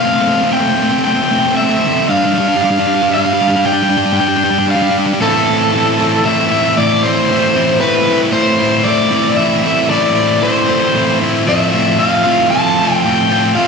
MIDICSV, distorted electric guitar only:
0, 0, Header, 1, 2, 480
1, 0, Start_track
1, 0, Key_signature, 0, "minor"
1, 0, Tempo, 521286
1, 481, Time_signature, 3, 2, 24, 8
1, 12592, End_track
2, 0, Start_track
2, 0, Title_t, "Distorted electric guitar"
2, 0, Program_c, 0, 30
2, 37, Note_on_c, 0, 57, 66
2, 54, Note_on_c, 0, 60, 61
2, 108, Note_off_c, 0, 57, 0
2, 112, Note_off_c, 0, 60, 0
2, 112, Note_on_c, 0, 57, 55
2, 116, Note_on_c, 0, 60, 54
2, 184, Note_off_c, 0, 57, 0
2, 187, Note_off_c, 0, 60, 0
2, 194, Note_on_c, 0, 57, 62
2, 197, Note_on_c, 0, 60, 68
2, 248, Note_off_c, 0, 57, 0
2, 251, Note_on_c, 0, 57, 52
2, 259, Note_off_c, 0, 60, 0
2, 263, Note_on_c, 0, 60, 57
2, 323, Note_off_c, 0, 57, 0
2, 327, Note_off_c, 0, 60, 0
2, 328, Note_on_c, 0, 57, 59
2, 330, Note_on_c, 0, 60, 59
2, 390, Note_off_c, 0, 57, 0
2, 394, Note_on_c, 0, 57, 49
2, 402, Note_off_c, 0, 60, 0
2, 414, Note_on_c, 0, 60, 55
2, 466, Note_off_c, 0, 57, 0
2, 482, Note_on_c, 0, 57, 81
2, 484, Note_off_c, 0, 60, 0
2, 487, Note_on_c, 0, 60, 82
2, 552, Note_off_c, 0, 57, 0
2, 555, Note_off_c, 0, 60, 0
2, 556, Note_on_c, 0, 57, 56
2, 558, Note_on_c, 0, 60, 58
2, 626, Note_off_c, 0, 57, 0
2, 628, Note_off_c, 0, 60, 0
2, 630, Note_on_c, 0, 57, 62
2, 631, Note_on_c, 0, 60, 76
2, 694, Note_off_c, 0, 57, 0
2, 697, Note_on_c, 0, 57, 56
2, 699, Note_off_c, 0, 60, 0
2, 703, Note_on_c, 0, 60, 66
2, 763, Note_off_c, 0, 57, 0
2, 765, Note_off_c, 0, 60, 0
2, 766, Note_on_c, 0, 57, 65
2, 769, Note_on_c, 0, 60, 71
2, 838, Note_off_c, 0, 57, 0
2, 838, Note_off_c, 0, 60, 0
2, 842, Note_on_c, 0, 60, 70
2, 843, Note_on_c, 0, 57, 57
2, 909, Note_off_c, 0, 57, 0
2, 911, Note_off_c, 0, 60, 0
2, 913, Note_on_c, 0, 57, 65
2, 915, Note_on_c, 0, 60, 79
2, 981, Note_off_c, 0, 57, 0
2, 985, Note_on_c, 0, 57, 62
2, 987, Note_off_c, 0, 60, 0
2, 996, Note_on_c, 0, 60, 64
2, 1048, Note_off_c, 0, 60, 0
2, 1052, Note_on_c, 0, 60, 78
2, 1057, Note_off_c, 0, 57, 0
2, 1066, Note_on_c, 0, 57, 69
2, 1124, Note_off_c, 0, 60, 0
2, 1125, Note_off_c, 0, 57, 0
2, 1129, Note_on_c, 0, 57, 63
2, 1129, Note_on_c, 0, 60, 74
2, 1201, Note_off_c, 0, 57, 0
2, 1201, Note_off_c, 0, 60, 0
2, 1206, Note_on_c, 0, 57, 74
2, 1211, Note_on_c, 0, 60, 84
2, 1276, Note_off_c, 0, 57, 0
2, 1280, Note_on_c, 0, 57, 58
2, 1283, Note_off_c, 0, 60, 0
2, 1287, Note_on_c, 0, 60, 73
2, 1342, Note_off_c, 0, 57, 0
2, 1344, Note_off_c, 0, 60, 0
2, 1346, Note_on_c, 0, 57, 74
2, 1348, Note_on_c, 0, 60, 83
2, 1412, Note_off_c, 0, 57, 0
2, 1416, Note_on_c, 0, 57, 58
2, 1420, Note_off_c, 0, 60, 0
2, 1424, Note_on_c, 0, 60, 70
2, 1484, Note_off_c, 0, 57, 0
2, 1488, Note_on_c, 0, 57, 71
2, 1493, Note_off_c, 0, 60, 0
2, 1497, Note_on_c, 0, 60, 74
2, 1552, Note_off_c, 0, 57, 0
2, 1556, Note_on_c, 0, 57, 54
2, 1558, Note_off_c, 0, 60, 0
2, 1562, Note_on_c, 0, 60, 63
2, 1628, Note_off_c, 0, 57, 0
2, 1634, Note_off_c, 0, 60, 0
2, 1639, Note_on_c, 0, 57, 62
2, 1643, Note_on_c, 0, 60, 77
2, 1711, Note_off_c, 0, 57, 0
2, 1712, Note_off_c, 0, 60, 0
2, 1715, Note_on_c, 0, 60, 65
2, 1716, Note_on_c, 0, 57, 56
2, 1770, Note_off_c, 0, 60, 0
2, 1773, Note_on_c, 0, 60, 73
2, 1782, Note_off_c, 0, 57, 0
2, 1785, Note_on_c, 0, 57, 62
2, 1840, Note_off_c, 0, 57, 0
2, 1844, Note_on_c, 0, 57, 52
2, 1845, Note_off_c, 0, 60, 0
2, 1852, Note_on_c, 0, 60, 57
2, 1916, Note_off_c, 0, 57, 0
2, 1921, Note_on_c, 0, 55, 78
2, 1924, Note_off_c, 0, 60, 0
2, 1928, Note_on_c, 0, 62, 87
2, 1992, Note_off_c, 0, 55, 0
2, 1996, Note_on_c, 0, 55, 53
2, 1997, Note_off_c, 0, 62, 0
2, 2000, Note_on_c, 0, 62, 61
2, 2058, Note_off_c, 0, 55, 0
2, 2062, Note_on_c, 0, 55, 63
2, 2072, Note_off_c, 0, 62, 0
2, 2078, Note_on_c, 0, 62, 68
2, 2129, Note_off_c, 0, 55, 0
2, 2132, Note_on_c, 0, 55, 58
2, 2148, Note_off_c, 0, 62, 0
2, 2151, Note_on_c, 0, 62, 66
2, 2188, Note_off_c, 0, 55, 0
2, 2192, Note_on_c, 0, 55, 67
2, 2207, Note_off_c, 0, 62, 0
2, 2210, Note_on_c, 0, 62, 75
2, 2263, Note_off_c, 0, 55, 0
2, 2281, Note_off_c, 0, 62, 0
2, 2281, Note_on_c, 0, 55, 59
2, 2284, Note_on_c, 0, 62, 64
2, 2345, Note_off_c, 0, 55, 0
2, 2348, Note_on_c, 0, 55, 69
2, 2356, Note_off_c, 0, 62, 0
2, 2365, Note_on_c, 0, 62, 72
2, 2417, Note_off_c, 0, 55, 0
2, 2421, Note_on_c, 0, 55, 59
2, 2433, Note_off_c, 0, 62, 0
2, 2437, Note_on_c, 0, 62, 71
2, 2489, Note_off_c, 0, 55, 0
2, 2489, Note_off_c, 0, 62, 0
2, 2492, Note_on_c, 0, 55, 68
2, 2493, Note_on_c, 0, 62, 79
2, 2564, Note_off_c, 0, 55, 0
2, 2565, Note_off_c, 0, 62, 0
2, 2567, Note_on_c, 0, 55, 61
2, 2578, Note_on_c, 0, 62, 70
2, 2636, Note_off_c, 0, 55, 0
2, 2640, Note_on_c, 0, 55, 68
2, 2641, Note_off_c, 0, 62, 0
2, 2645, Note_on_c, 0, 62, 73
2, 2704, Note_off_c, 0, 62, 0
2, 2707, Note_on_c, 0, 62, 68
2, 2711, Note_off_c, 0, 55, 0
2, 2718, Note_on_c, 0, 55, 67
2, 2779, Note_off_c, 0, 62, 0
2, 2784, Note_off_c, 0, 55, 0
2, 2787, Note_on_c, 0, 55, 67
2, 2787, Note_on_c, 0, 62, 75
2, 2848, Note_off_c, 0, 55, 0
2, 2852, Note_on_c, 0, 55, 61
2, 2859, Note_off_c, 0, 62, 0
2, 2866, Note_on_c, 0, 62, 67
2, 2915, Note_off_c, 0, 55, 0
2, 2919, Note_on_c, 0, 55, 67
2, 2925, Note_off_c, 0, 62, 0
2, 2928, Note_on_c, 0, 62, 75
2, 2991, Note_off_c, 0, 55, 0
2, 2994, Note_off_c, 0, 62, 0
2, 2995, Note_on_c, 0, 55, 57
2, 2998, Note_on_c, 0, 62, 69
2, 3064, Note_off_c, 0, 55, 0
2, 3068, Note_on_c, 0, 55, 70
2, 3069, Note_off_c, 0, 62, 0
2, 3075, Note_on_c, 0, 62, 69
2, 3137, Note_off_c, 0, 55, 0
2, 3140, Note_on_c, 0, 55, 58
2, 3147, Note_off_c, 0, 62, 0
2, 3155, Note_on_c, 0, 62, 58
2, 3205, Note_off_c, 0, 55, 0
2, 3209, Note_on_c, 0, 55, 67
2, 3223, Note_off_c, 0, 62, 0
2, 3227, Note_on_c, 0, 62, 67
2, 3276, Note_off_c, 0, 55, 0
2, 3280, Note_on_c, 0, 55, 59
2, 3283, Note_off_c, 0, 62, 0
2, 3287, Note_on_c, 0, 62, 57
2, 3352, Note_off_c, 0, 55, 0
2, 3358, Note_off_c, 0, 62, 0
2, 3364, Note_on_c, 0, 55, 89
2, 3373, Note_on_c, 0, 62, 104
2, 3426, Note_off_c, 0, 55, 0
2, 3430, Note_on_c, 0, 55, 63
2, 3432, Note_off_c, 0, 62, 0
2, 3435, Note_on_c, 0, 62, 74
2, 3502, Note_off_c, 0, 55, 0
2, 3507, Note_off_c, 0, 62, 0
2, 3515, Note_on_c, 0, 55, 72
2, 3529, Note_on_c, 0, 62, 83
2, 3573, Note_off_c, 0, 55, 0
2, 3577, Note_on_c, 0, 55, 59
2, 3590, Note_off_c, 0, 62, 0
2, 3594, Note_on_c, 0, 62, 72
2, 3649, Note_off_c, 0, 55, 0
2, 3657, Note_off_c, 0, 62, 0
2, 3658, Note_on_c, 0, 55, 78
2, 3661, Note_on_c, 0, 62, 85
2, 3718, Note_off_c, 0, 55, 0
2, 3722, Note_on_c, 0, 55, 64
2, 3733, Note_off_c, 0, 62, 0
2, 3737, Note_on_c, 0, 62, 77
2, 3794, Note_off_c, 0, 55, 0
2, 3799, Note_off_c, 0, 62, 0
2, 3801, Note_on_c, 0, 55, 80
2, 3803, Note_on_c, 0, 62, 83
2, 3869, Note_off_c, 0, 62, 0
2, 3871, Note_off_c, 0, 55, 0
2, 3872, Note_on_c, 0, 62, 83
2, 3875, Note_on_c, 0, 55, 70
2, 3939, Note_off_c, 0, 62, 0
2, 3943, Note_off_c, 0, 55, 0
2, 3943, Note_on_c, 0, 62, 87
2, 3946, Note_on_c, 0, 55, 74
2, 4014, Note_off_c, 0, 62, 0
2, 4017, Note_off_c, 0, 55, 0
2, 4021, Note_on_c, 0, 55, 64
2, 4028, Note_on_c, 0, 62, 74
2, 4082, Note_off_c, 0, 55, 0
2, 4086, Note_on_c, 0, 55, 76
2, 4092, Note_off_c, 0, 62, 0
2, 4096, Note_on_c, 0, 62, 88
2, 4146, Note_off_c, 0, 55, 0
2, 4149, Note_on_c, 0, 55, 67
2, 4151, Note_off_c, 0, 62, 0
2, 4155, Note_on_c, 0, 62, 73
2, 4220, Note_off_c, 0, 55, 0
2, 4224, Note_on_c, 0, 55, 73
2, 4225, Note_off_c, 0, 62, 0
2, 4228, Note_on_c, 0, 62, 90
2, 4291, Note_off_c, 0, 55, 0
2, 4295, Note_on_c, 0, 55, 64
2, 4300, Note_off_c, 0, 62, 0
2, 4313, Note_on_c, 0, 62, 77
2, 4367, Note_off_c, 0, 55, 0
2, 4373, Note_on_c, 0, 55, 80
2, 4384, Note_off_c, 0, 62, 0
2, 4389, Note_on_c, 0, 62, 83
2, 4435, Note_off_c, 0, 62, 0
2, 4437, Note_off_c, 0, 55, 0
2, 4439, Note_on_c, 0, 62, 75
2, 4440, Note_on_c, 0, 55, 64
2, 4511, Note_off_c, 0, 62, 0
2, 4512, Note_off_c, 0, 55, 0
2, 4515, Note_on_c, 0, 62, 84
2, 4526, Note_on_c, 0, 55, 74
2, 4582, Note_off_c, 0, 55, 0
2, 4586, Note_on_c, 0, 55, 60
2, 4587, Note_off_c, 0, 62, 0
2, 4597, Note_on_c, 0, 62, 72
2, 4658, Note_off_c, 0, 55, 0
2, 4662, Note_off_c, 0, 62, 0
2, 4666, Note_on_c, 0, 55, 72
2, 4666, Note_on_c, 0, 62, 78
2, 4730, Note_off_c, 0, 55, 0
2, 4734, Note_off_c, 0, 62, 0
2, 4734, Note_on_c, 0, 55, 55
2, 4738, Note_on_c, 0, 62, 68
2, 4796, Note_on_c, 0, 45, 94
2, 4799, Note_off_c, 0, 55, 0
2, 4802, Note_off_c, 0, 62, 0
2, 4803, Note_on_c, 0, 52, 108
2, 4805, Note_on_c, 0, 57, 97
2, 4813, Note_on_c, 0, 60, 102
2, 4822, Note_on_c, 0, 64, 108
2, 5030, Note_off_c, 0, 64, 0
2, 5034, Note_on_c, 0, 64, 85
2, 5045, Note_off_c, 0, 60, 0
2, 5049, Note_on_c, 0, 60, 75
2, 5057, Note_off_c, 0, 57, 0
2, 5061, Note_on_c, 0, 57, 70
2, 5277, Note_off_c, 0, 52, 0
2, 5281, Note_on_c, 0, 52, 75
2, 5287, Note_off_c, 0, 57, 0
2, 5291, Note_on_c, 0, 57, 88
2, 5298, Note_off_c, 0, 60, 0
2, 5302, Note_on_c, 0, 60, 84
2, 5303, Note_off_c, 0, 64, 0
2, 5306, Note_on_c, 0, 64, 94
2, 5510, Note_off_c, 0, 64, 0
2, 5514, Note_on_c, 0, 64, 87
2, 5518, Note_off_c, 0, 60, 0
2, 5521, Note_on_c, 0, 60, 97
2, 5526, Note_off_c, 0, 57, 0
2, 5530, Note_on_c, 0, 57, 82
2, 5532, Note_off_c, 0, 52, 0
2, 5536, Note_off_c, 0, 45, 0
2, 5536, Note_on_c, 0, 52, 80
2, 5540, Note_on_c, 0, 45, 83
2, 5750, Note_off_c, 0, 52, 0
2, 5753, Note_on_c, 0, 52, 88
2, 5768, Note_off_c, 0, 57, 0
2, 5771, Note_on_c, 0, 57, 84
2, 5772, Note_off_c, 0, 60, 0
2, 5775, Note_on_c, 0, 60, 90
2, 5781, Note_off_c, 0, 64, 0
2, 5784, Note_on_c, 0, 64, 85
2, 5991, Note_off_c, 0, 64, 0
2, 5994, Note_on_c, 0, 64, 84
2, 6010, Note_off_c, 0, 60, 0
2, 6013, Note_on_c, 0, 60, 70
2, 6017, Note_off_c, 0, 57, 0
2, 6020, Note_on_c, 0, 57, 63
2, 6224, Note_off_c, 0, 45, 0
2, 6228, Note_on_c, 0, 45, 104
2, 6232, Note_off_c, 0, 52, 0
2, 6235, Note_on_c, 0, 52, 108
2, 6237, Note_off_c, 0, 57, 0
2, 6241, Note_on_c, 0, 57, 110
2, 6242, Note_off_c, 0, 60, 0
2, 6246, Note_on_c, 0, 60, 106
2, 6248, Note_off_c, 0, 64, 0
2, 6252, Note_on_c, 0, 64, 107
2, 6466, Note_off_c, 0, 64, 0
2, 6470, Note_on_c, 0, 64, 92
2, 6480, Note_off_c, 0, 60, 0
2, 6484, Note_on_c, 0, 60, 78
2, 6493, Note_off_c, 0, 57, 0
2, 6497, Note_on_c, 0, 57, 80
2, 6711, Note_off_c, 0, 52, 0
2, 6715, Note_on_c, 0, 52, 85
2, 6716, Note_off_c, 0, 57, 0
2, 6720, Note_on_c, 0, 57, 87
2, 6728, Note_off_c, 0, 60, 0
2, 6732, Note_on_c, 0, 60, 83
2, 6736, Note_off_c, 0, 64, 0
2, 6740, Note_on_c, 0, 64, 90
2, 6949, Note_off_c, 0, 64, 0
2, 6952, Note_on_c, 0, 64, 84
2, 6959, Note_off_c, 0, 60, 0
2, 6961, Note_off_c, 0, 57, 0
2, 6963, Note_on_c, 0, 60, 91
2, 6965, Note_on_c, 0, 57, 82
2, 6973, Note_off_c, 0, 52, 0
2, 6976, Note_on_c, 0, 52, 83
2, 6978, Note_off_c, 0, 45, 0
2, 6981, Note_on_c, 0, 45, 78
2, 7186, Note_off_c, 0, 52, 0
2, 7190, Note_on_c, 0, 52, 74
2, 7197, Note_off_c, 0, 57, 0
2, 7201, Note_on_c, 0, 57, 93
2, 7202, Note_off_c, 0, 60, 0
2, 7205, Note_on_c, 0, 60, 90
2, 7212, Note_off_c, 0, 64, 0
2, 7216, Note_on_c, 0, 64, 86
2, 7433, Note_off_c, 0, 64, 0
2, 7436, Note_on_c, 0, 64, 86
2, 7451, Note_off_c, 0, 60, 0
2, 7455, Note_on_c, 0, 60, 79
2, 7462, Note_off_c, 0, 57, 0
2, 7465, Note_on_c, 0, 57, 73
2, 7665, Note_off_c, 0, 45, 0
2, 7669, Note_on_c, 0, 45, 112
2, 7676, Note_off_c, 0, 52, 0
2, 7680, Note_on_c, 0, 52, 114
2, 7685, Note_off_c, 0, 57, 0
2, 7689, Note_on_c, 0, 57, 112
2, 7692, Note_off_c, 0, 60, 0
2, 7695, Note_off_c, 0, 64, 0
2, 7696, Note_on_c, 0, 60, 108
2, 7699, Note_on_c, 0, 64, 127
2, 7916, Note_off_c, 0, 64, 0
2, 7920, Note_on_c, 0, 64, 97
2, 7932, Note_off_c, 0, 60, 0
2, 7935, Note_on_c, 0, 60, 88
2, 7944, Note_off_c, 0, 57, 0
2, 7948, Note_on_c, 0, 57, 71
2, 8147, Note_off_c, 0, 52, 0
2, 8150, Note_on_c, 0, 52, 81
2, 8158, Note_off_c, 0, 57, 0
2, 8162, Note_on_c, 0, 57, 92
2, 8165, Note_off_c, 0, 60, 0
2, 8169, Note_on_c, 0, 60, 90
2, 8173, Note_off_c, 0, 64, 0
2, 8177, Note_on_c, 0, 64, 104
2, 8374, Note_off_c, 0, 64, 0
2, 8385, Note_on_c, 0, 64, 100
2, 8387, Note_off_c, 0, 60, 0
2, 8391, Note_on_c, 0, 60, 96
2, 8394, Note_off_c, 0, 57, 0
2, 8398, Note_on_c, 0, 57, 85
2, 8399, Note_off_c, 0, 52, 0
2, 8410, Note_off_c, 0, 45, 0
2, 8410, Note_on_c, 0, 52, 79
2, 8414, Note_on_c, 0, 45, 72
2, 8615, Note_off_c, 0, 52, 0
2, 8626, Note_on_c, 0, 52, 87
2, 8636, Note_off_c, 0, 57, 0
2, 8640, Note_on_c, 0, 57, 87
2, 8643, Note_off_c, 0, 64, 0
2, 8645, Note_off_c, 0, 60, 0
2, 8649, Note_on_c, 0, 60, 95
2, 8654, Note_on_c, 0, 64, 86
2, 8859, Note_off_c, 0, 64, 0
2, 8870, Note_on_c, 0, 64, 88
2, 8884, Note_off_c, 0, 60, 0
2, 8887, Note_on_c, 0, 60, 71
2, 8894, Note_off_c, 0, 57, 0
2, 8898, Note_on_c, 0, 57, 65
2, 9102, Note_off_c, 0, 45, 0
2, 9102, Note_off_c, 0, 52, 0
2, 9106, Note_on_c, 0, 45, 97
2, 9113, Note_on_c, 0, 52, 105
2, 9120, Note_off_c, 0, 57, 0
2, 9123, Note_off_c, 0, 60, 0
2, 9124, Note_off_c, 0, 64, 0
2, 9124, Note_on_c, 0, 57, 112
2, 9126, Note_on_c, 0, 60, 103
2, 9135, Note_on_c, 0, 64, 105
2, 9337, Note_off_c, 0, 64, 0
2, 9348, Note_on_c, 0, 64, 81
2, 9356, Note_off_c, 0, 60, 0
2, 9360, Note_on_c, 0, 60, 79
2, 9371, Note_off_c, 0, 57, 0
2, 9375, Note_on_c, 0, 57, 73
2, 9577, Note_off_c, 0, 52, 0
2, 9588, Note_on_c, 0, 52, 87
2, 9595, Note_off_c, 0, 57, 0
2, 9599, Note_on_c, 0, 57, 78
2, 9605, Note_off_c, 0, 64, 0
2, 9608, Note_off_c, 0, 60, 0
2, 9611, Note_on_c, 0, 60, 88
2, 9616, Note_on_c, 0, 64, 81
2, 9823, Note_off_c, 0, 64, 0
2, 9834, Note_on_c, 0, 64, 96
2, 9837, Note_off_c, 0, 60, 0
2, 9841, Note_on_c, 0, 60, 90
2, 9846, Note_off_c, 0, 52, 0
2, 9848, Note_off_c, 0, 57, 0
2, 9852, Note_on_c, 0, 57, 85
2, 9856, Note_off_c, 0, 45, 0
2, 9857, Note_on_c, 0, 52, 71
2, 9860, Note_on_c, 0, 45, 85
2, 10061, Note_off_c, 0, 52, 0
2, 10072, Note_on_c, 0, 52, 72
2, 10080, Note_off_c, 0, 57, 0
2, 10084, Note_on_c, 0, 57, 85
2, 10085, Note_off_c, 0, 64, 0
2, 10086, Note_off_c, 0, 60, 0
2, 10090, Note_on_c, 0, 60, 82
2, 10096, Note_on_c, 0, 64, 94
2, 10312, Note_off_c, 0, 64, 0
2, 10324, Note_on_c, 0, 64, 82
2, 10333, Note_off_c, 0, 60, 0
2, 10337, Note_on_c, 0, 60, 68
2, 10340, Note_off_c, 0, 57, 0
2, 10344, Note_on_c, 0, 57, 61
2, 10544, Note_off_c, 0, 52, 0
2, 10550, Note_off_c, 0, 64, 0
2, 10552, Note_off_c, 0, 45, 0
2, 10555, Note_on_c, 0, 45, 91
2, 10562, Note_off_c, 0, 57, 0
2, 10566, Note_on_c, 0, 53, 98
2, 10566, Note_on_c, 0, 57, 89
2, 10576, Note_off_c, 0, 60, 0
2, 10579, Note_on_c, 0, 60, 110
2, 10583, Note_on_c, 0, 65, 116
2, 10788, Note_off_c, 0, 65, 0
2, 10792, Note_on_c, 0, 65, 88
2, 10805, Note_off_c, 0, 60, 0
2, 10808, Note_on_c, 0, 60, 77
2, 10816, Note_off_c, 0, 57, 0
2, 10820, Note_on_c, 0, 57, 67
2, 11034, Note_off_c, 0, 53, 0
2, 11038, Note_on_c, 0, 53, 71
2, 11046, Note_off_c, 0, 57, 0
2, 11049, Note_off_c, 0, 60, 0
2, 11050, Note_on_c, 0, 57, 83
2, 11053, Note_on_c, 0, 60, 97
2, 11061, Note_off_c, 0, 65, 0
2, 11065, Note_on_c, 0, 65, 106
2, 11270, Note_off_c, 0, 65, 0
2, 11271, Note_off_c, 0, 60, 0
2, 11274, Note_on_c, 0, 65, 96
2, 11275, Note_off_c, 0, 57, 0
2, 11282, Note_on_c, 0, 60, 86
2, 11286, Note_on_c, 0, 57, 88
2, 11288, Note_off_c, 0, 53, 0
2, 11291, Note_on_c, 0, 53, 77
2, 11300, Note_off_c, 0, 45, 0
2, 11304, Note_on_c, 0, 45, 74
2, 11510, Note_off_c, 0, 53, 0
2, 11514, Note_off_c, 0, 57, 0
2, 11514, Note_on_c, 0, 53, 82
2, 11520, Note_off_c, 0, 60, 0
2, 11525, Note_on_c, 0, 57, 79
2, 11532, Note_on_c, 0, 60, 93
2, 11540, Note_off_c, 0, 65, 0
2, 11544, Note_on_c, 0, 65, 89
2, 11758, Note_off_c, 0, 65, 0
2, 11761, Note_on_c, 0, 65, 83
2, 11763, Note_off_c, 0, 60, 0
2, 11774, Note_off_c, 0, 45, 0
2, 11774, Note_on_c, 0, 60, 68
2, 11775, Note_off_c, 0, 57, 0
2, 11786, Note_on_c, 0, 57, 65
2, 12011, Note_on_c, 0, 45, 94
2, 12012, Note_off_c, 0, 57, 0
2, 12018, Note_off_c, 0, 53, 0
2, 12019, Note_off_c, 0, 60, 0
2, 12022, Note_on_c, 0, 53, 95
2, 12023, Note_on_c, 0, 57, 107
2, 12030, Note_on_c, 0, 60, 111
2, 12033, Note_off_c, 0, 65, 0
2, 12037, Note_on_c, 0, 65, 107
2, 12243, Note_off_c, 0, 65, 0
2, 12247, Note_on_c, 0, 65, 83
2, 12249, Note_off_c, 0, 60, 0
2, 12259, Note_off_c, 0, 57, 0
2, 12260, Note_on_c, 0, 60, 85
2, 12270, Note_on_c, 0, 57, 69
2, 12478, Note_off_c, 0, 53, 0
2, 12480, Note_off_c, 0, 57, 0
2, 12481, Note_on_c, 0, 53, 85
2, 12487, Note_off_c, 0, 45, 0
2, 12491, Note_on_c, 0, 57, 85
2, 12493, Note_off_c, 0, 60, 0
2, 12504, Note_on_c, 0, 60, 90
2, 12507, Note_off_c, 0, 65, 0
2, 12511, Note_on_c, 0, 65, 98
2, 12592, Note_off_c, 0, 53, 0
2, 12592, Note_off_c, 0, 57, 0
2, 12592, Note_off_c, 0, 60, 0
2, 12592, Note_off_c, 0, 65, 0
2, 12592, End_track
0, 0, End_of_file